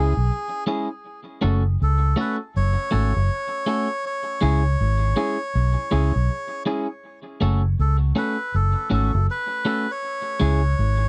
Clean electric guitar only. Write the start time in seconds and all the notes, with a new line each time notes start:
Already playing: G#3 C#4 E4 G#4
0.67 G#3 C#4 E4 G#4
1.41 A3 C#4 F#4 A4
2.16 A3 C#4 F#4 A4
2.91 A3 C#4 F#4 A4
3.14 muted clean electric guitar stroke
3.66 A3 C#4 F#4 A4
4.41 G#3 C#4 E4 G#4
5.16 G#3 C#4 E4 G#4
5.91 G#3 C#4 E4 G#4
6.14 muted clean electric guitar stroke
6.66 G#3 C#4 E4 G#4
7.41 A3 C#4 F#4 A4
8.15 A3 C#4 F#4 A4
8.90 A3 C#4 F#4 A4
9.13 muted clean electric guitar stroke
9.65 A3 C#4 F#4 A4
10.40 G#3 C#4 E4 G#4